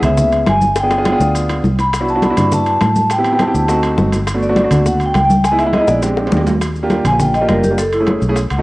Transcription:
0.02 fingered electric bass C#2, grand piano B3 C#4 E4 G#4, vibraphone E5, high conga, low conga, high timbale, maracas
0.17 high bongo, high conga, low conga, maracas
0.32 high conga, high timbale, maracas
0.47 fingered electric bass G1, vibraphone G#5, high bongo, low bongo, high conga, high timbale, low timbale, maracas
0.62 high conga, maracas
0.76 vibraphone G5, high bongo, high conga, high timbale, maracas
0.83 grand piano B3 D4 F4 G#4
0.91 high bongo, high conga, high timbale, maracas
0.98 grand piano B3 D4 F4 G#4
1.05 high bongo, high conga, high timbale, maracas
1.12 grand piano B3 D4 F4 G#4
1.20 fingered electric bass D2, grand piano B3 D4 F4 G#4, low bongo, high conga, maracas
1.35 high conga, high timbale, maracas
1.49 low bongo, high conga, high timbale, maracas
1.64 fingered electric bass C2, low bongo, high conga, maracas
1.79 vibraphone B5, low bongo, high timbale, maracas
1.93 high bongo, high conga, high timbale, maracas
2.00 grand piano B3 D4 E4 F#4
2.08 vibraphone A5, high conga, maracas
2.15 grand piano B3 D4 E4 F#4
2.22 vibraphone B5, high bongo, high conga, high timbale, maracas
2.30 grand piano B3 D4 E4 F#4
2.37 fingered electric bass G2, grand piano B3 D4 E4 F#4, high conga, low conga, high timbale, maracas
2.52 vibraphone A5, high bongo, high conga, low conga, maracas
2.66 high conga, high timbale, maracas
2.81 fingered electric bass A2, high bongo, low bongo, high conga, high timbale, low timbale, maracas
2.95 high conga, maracas
3.10 vibraphone G5, high bongo, high conga, high timbale, maracas
3.18 grand piano B3 C4 E4 G4
3.24 high conga, high timbale, maracas
3.32 grand piano B3 C4 E4 G4
3.39 vibraphone A5, high bongo, high conga, high timbale, maracas
3.47 grand piano B3 C4 E4 G4
3.54 fingered electric bass D2, grand piano B3 C4 E4 G4, high bongo, high conga, maracas
3.68 grand piano A3 C4 D#4 F#4, high bongo, high conga, high timbale, maracas
3.83 high bongo, high conga, high timbale, maracas
3.98 fingered electric bass G1, high bongo, low bongo, high conga, maracas
4.12 high bongo, high conga, high timbale, maracas
4.27 high bongo, high conga, high timbale, maracas
4.34 grand piano A3 B3 D4 F#4
4.42 vibraphone D5, high conga, maracas
4.49 grand piano A3 B3 D4 F#4
4.56 high bongo, high conga, high timbale, maracas
4.64 grand piano A3 B3 D4 F#4
4.71 fingered electric bass D2, grand piano A3 B3 D4 F#4, high conga, low conga, high timbale, maracas
4.85 vibraphone F#5, high bongo, high conga, low conga, maracas
5.00 high conga, high timbale, maracas
5.06 vibraphone G5
5.14 fingered electric bass C#2, high bongo, low bongo, high conga, high timbale, maracas
5.25 vibraphone G5
5.30 high conga, maracas
5.44 vibraphone G#5, high bongo, high conga, high timbale, maracas
5.51 grand piano G#3 B3 D#4 E4
5.59 vibraphone E5, high conga, high timbale, maracas
5.66 grand piano G#3 B3 D#4 E4
5.73 vibraphone D#5, high bongo, high conga, high timbale, maracas
5.80 grand piano G#3 B3 D#4 E4
5.87 fingered electric bass A#1, grand piano G#3 B3 D#4 E4, vibraphone D5, high bongo, high conga, maracas
6.02 grand piano G#3 C4 D4 G4, high bongo, high conga, high timbale, maracas
6.17 high bongo, high conga, high timbale, maracas
6.27 high timbale
6.32 fingered electric bass D#2, low bongo, high conga, maracas
6.37 low timbale
6.46 low bongo, high conga, low timbale, maracas
6.61 high bongo, high conga, high timbale, maracas
6.76 high conga, maracas
6.83 grand piano A#3 D4 F4 G4
6.90 high bongo, high conga, high timbale, maracas
7.04 fingered electric bass A#1, vibraphone G#5, high conga, low conga, high timbale, maracas
7.12 grand piano A#3 D4 F4 G4
7.19 vibraphone G5, high bongo, high conga, low conga, maracas
7.34 vibraphone D#5, high conga, high timbale, maracas
7.41 grand piano A#3 D4 F4 G4
7.49 fingered electric bass F#1, vibraphone A#4, high bongo, low bongo, high conga, high timbale, low timbale, maracas
7.63 vibraphone G4, high conga, maracas
7.70 grand piano A#3 D4 F4 G4
7.78 vibraphone A4, high bongo, high conga, high timbale, maracas
7.93 vibraphone E4, high conga, high timbale, maracas
8.00 grand piano A3 C#4 E4 G#4
8.07 high bongo, high conga, high timbale, maracas
8.22 fingered electric bass B1, high bongo, high conga, maracas
8.29 grand piano A3 C#4 E4 G#4
8.36 high bongo, high conga, high timbale, maracas
8.50 fingered electric bass C#2, vibraphone F#5, high bongo, high conga, high timbale, maracas
8.58 grand piano A3 C#4 D#4 F#4

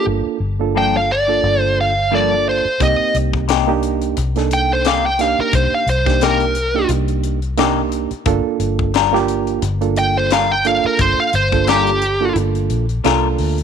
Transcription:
Already playing: reed electric piano A#3 D4 F4 A4
0.07 fingered electric bass G1
0.26 muted fingered electric bass stroke
0.40 fingered electric bass G1
0.60 reed electric piano A#3 D4 F4 A4
0.75 clean electric guitar G2 F3 A#3 D4, lead electric guitar G5
0.97 lead electric guitar F5
1.12 lead electric guitar D5
1.28 reed electric piano A#3 D4 F4 A4
1.43 fingered electric bass G1
1.61 lead electric guitar C5
1.81 lead electric guitar F5
2.11 clean electric guitar G2 F3 A#3 D4, reed electric piano A#3 D4 F4 A4
2.15 lead electric guitar D5
2.49 lead electric guitar C5
2.65 muted fingered electric bass stroke
2.80 fingered electric bass C2, reed electric piano A#3 C4 D#4 G4, lead electric guitar D#5, kick, closed hi-hat
3.15 fingered electric bass C2, closed hi-hat
3.33 kick
3.48 clean electric guitar C3 A#3 D#4 G4, snare, closed hi-hat
3.67 reed electric piano A#3 D4 D#4 G4
3.83 closed hi-hat
4.02 closed hi-hat
4.17 fingered electric bass C2, closed hi-hat
4.36 reed electric piano A#3 D4 D#4 A4, snare, closed hi-hat
4.51 lead electric guitar G5, closed hi-hat
4.73 lead electric guitar C5
4.85 clean electric guitar C3 A#3 D#4 G4, lead electric guitar F5, snare, closed hi-hat
5.06 lead electric guitar G5
5.19 reed electric piano A#3 D4 D#4 G4, lead electric guitar F5, snare, closed hi-hat
5.39 lead electric guitar A#4, muted fingered electric bass stroke
5.53 fingered electric bass C2, lead electric guitar C5, kick, closed hi-hat
5.72 lead electric guitar F5, muted fingered electric bass stroke
5.87 fingered electric bass C2, lead electric guitar C5, closed hi-hat
6.06 reed electric piano A#3 D4 D#4 G4, kick, snare, closed hi-hat
6.21 clean electric guitar C3 A#3 D#4 G4, lead electric guitar A#4, snare, closed hi-hat
6.40 closed hi-hat
6.55 closed hi-hat
6.75 reed electric piano A#3 D4 D#4 G4
6.89 fingered electric bass C2, closed hi-hat
7.08 closed hi-hat
7.24 closed hi-hat
7.42 closed hi-hat
7.57 clean electric guitar C3 A#3 D#4 G4, reed electric piano A#3 D4 D#4 G4, snare, closed hi-hat
7.92 closed hi-hat
8.11 muted fingered electric bass stroke, closed hi-hat
8.26 fingered electric bass G1, reed electric piano A#3 D4 F4 A4, kick, closed hi-hat
8.59 fingered electric bass G1, closed hi-hat
8.79 kick
8.94 clean electric guitar G3 D4 F4 A#4, snare, closed hi-hat
9.13 reed electric piano A#3 D4 F4 G4, snare
9.28 closed hi-hat
9.47 closed hi-hat
9.62 fingered electric bass G1, closed hi-hat
9.81 reed electric piano A#3 D4 F4 A4, closed hi-hat
9.96 lead electric guitar G5, closed hi-hat
10.18 lead electric guitar C5
10.31 clean electric guitar G3 D4 F4 A#4, lead electric guitar F5, snare, closed hi-hat
10.52 lead electric guitar G5
10.65 reed electric piano A#3 D4 F4 A4, lead electric guitar F5, closed hi-hat
10.84 lead electric guitar A#4, muted fingered electric bass stroke
10.99 fingered electric bass G1, lead electric guitar C5, kick, closed hi-hat
11.18 lead electric guitar F5, muted fingered electric bass stroke
11.33 fingered electric bass G1, lead electric guitar C5, closed hi-hat
11.52 reed electric piano A#3 D4 F4 A4, kick, closed hi-hat
11.67 clean electric guitar G3 D4 F4 A#4, lead electric guitar G4, snare, closed hi-hat
11.87 closed hi-hat
12.02 closed hi-hat
12.20 reed electric piano A#3 D4 F4 A4
12.35 fingered electric bass G1, closed hi-hat
12.55 closed hi-hat
12.70 fingered electric bass A#1, closed hi-hat
12.89 closed hi-hat
13.04 fingered electric bass C2, clean electric guitar G3 D4 F4 A#4, reed electric piano A#3 D4 F4 A4, snare, closed hi-hat
13.38 fingered electric bass D2, open hi-hat
13.58 closed hi-hat

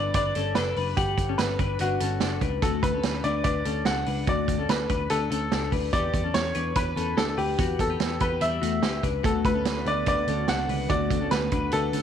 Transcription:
Already playing: picked electric bass G1, clean electric guitar D4 B4, upright piano D5
0.14 picked electric bass G1, clean electric guitar D4 B4, upright piano D5, kick, closed hi-hat
0.35 picked electric bass G1, clean electric guitar C#4 A4, closed hi-hat
0.55 picked electric bass F#1, clean electric guitar D4 A4, upright piano B4, snare, closed hi-hat
0.76 picked electric bass F#1, clean electric guitar D4 B4, open hi-hat
0.97 picked electric bass G1, clean electric guitar B3 F#5, upright piano G4, kick, closed hi-hat
1.18 picked electric bass G1, kick, closed hi-hat
1.29 clean electric guitar C#4 A4
1.38 picked electric bass G1, upright piano B4, snare, closed hi-hat
1.59 picked electric bass G1, clean electric guitar D4 B4, kick, closed hi-hat
1.79 picked electric bass G1, clean electric guitar D4 B4, upright piano F#4, closed hi-hat
2.00 picked electric bass G1, clean electric guitar C#4 A4, closed hi-hat
2.20 picked electric bass F#1, clean electric guitar D4 A4, snare, closed hi-hat
2.41 picked electric bass C#2, clean electric guitar D4 B4, kick, closed hi-hat
2.62 picked electric bass D2, clean electric guitar A3 F#4, upright piano A4, kick, closed hi-hat
2.83 picked electric bass D2, upright piano B4, kick, closed hi-hat
2.94 clean electric guitar C#4 A4
3.03 picked electric bass D2, snare, closed hi-hat
3.24 picked electric bass D2, clean electric guitar D4 B4, upright piano D5, closed hi-hat
3.44 picked electric bass D2, clean electric guitar D4 B4, upright piano D5, kick, closed hi-hat
3.65 picked electric bass D2, clean electric guitar C#4 A4, closed hi-hat
3.85 picked electric bass C#2, clean electric guitar D4 A4, upright piano F#5, snare, closed hi-hat
4.06 picked electric bass C#2, clean electric guitar D4 B4, open hi-hat
4.27 picked electric bass D2, clean electric guitar A3 F#4, upright piano D5, kick, closed hi-hat
4.48 picked electric bass D2, kick, closed hi-hat
4.58 clean electric guitar C#4 A4
4.69 picked electric bass D2, upright piano B4, snare, closed hi-hat
4.89 picked electric bass D2, clean electric guitar D4 B4, kick, closed hi-hat
5.10 picked electric bass D2, clean electric guitar D4 B4, upright piano A4, closed hi-hat
5.30 picked electric bass D2, clean electric guitar C#4 A4, closed hi-hat
5.52 picked electric bass C#2, clean electric guitar D4 A4, snare, closed hi-hat
5.72 picked electric bass D2, clean electric guitar D4 B4, kick, open hi-hat
5.93 picked electric bass E2, clean electric guitar B3 G4, upright piano D5, kick, closed hi-hat
6.14 picked electric bass E2, kick, closed hi-hat
6.24 clean electric guitar C#4 A4
6.34 picked electric bass E2, upright piano C#5, snare, closed hi-hat
6.55 picked electric bass E2, clean electric guitar D4 B4, closed hi-hat
6.75 picked electric bass E2, clean electric guitar D4 B4, upright piano B4, kick, closed hi-hat
6.96 picked electric bass E2, clean electric guitar C#4 A4, closed hi-hat
7.17 picked electric bass D2, clean electric guitar D4 A4, upright piano A4, snare, closed hi-hat
7.30 upright piano A4
7.37 picked electric bass D2, clean electric guitar D4 B4, upright piano G4, open hi-hat
7.58 picked electric bass E2, clean electric guitar B3 F#4, kick, closed hi-hat
7.79 picked electric bass E2, upright piano A4, kick, closed hi-hat
7.90 clean electric guitar B3 G4
8.00 picked electric bass E2, snare, closed hi-hat
8.20 picked electric bass E2, clean electric guitar B3 G4, upright piano B4, kick, closed hi-hat
8.41 picked electric bass E2, clean electric guitar G3 E4, upright piano E5, closed hi-hat
8.62 picked electric bass E2, clean electric guitar A3 F#4, closed hi-hat
8.82 picked electric bass D2, clean electric guitar B3 G4, snare, closed hi-hat
9.03 picked electric bass C#2, clean electric guitar D4 B4, kick, closed hi-hat
9.23 picked electric bass D2, steel-string acoustic guitar D3 A3 B3 F#4, clean electric guitar A3 F#4, upright piano A4, kick, closed hi-hat
9.45 picked electric bass D2, upright piano B4, kick, closed hi-hat
9.55 clean electric guitar C#4 A4
9.65 picked electric bass D2, snare, closed hi-hat
9.75 steel-string acoustic guitar A3 B3 F#4
9.86 picked electric bass D2, steel-string acoustic guitar D3 A3 B3 F#4, clean electric guitar D4 B4, upright piano D5, closed hi-hat
10.06 picked electric bass D2, clean electric guitar D4 B4, upright piano D5, kick, closed hi-hat
10.27 picked electric bass D2, steel-string acoustic guitar D3 A3 B3 F#4, clean electric guitar C#4 A4, closed hi-hat
10.47 picked electric bass C#2, steel-string acoustic guitar D3 A3 B3, clean electric guitar D4 A4, upright piano F#5, snare, closed hi-hat
10.68 picked electric bass C#2, steel-string acoustic guitar D3 A3 B3 F#4, clean electric guitar D4 B4, open hi-hat
10.88 picked electric bass D2, steel-string acoustic guitar D3 A3 B3 F#4, clean electric guitar A3 F#4, upright piano D5, kick, closed hi-hat
11.11 picked electric bass D2, kick, closed hi-hat
11.21 clean electric guitar C#4 A4
11.31 picked electric bass D2, upright piano B4, snare, closed hi-hat
11.41 steel-string acoustic guitar A3 B3 F#4
11.50 picked electric bass D2, steel-string acoustic guitar D3 A3 B3 F#4, clean electric guitar D4 B4, kick, closed hi-hat
11.72 picked electric bass D2, clean electric guitar D4 B4, upright piano A4, closed hi-hat
11.92 picked electric bass D2, steel-string acoustic guitar D3 A3 B3 F#4, clean electric guitar C#4 A4, closed hi-hat

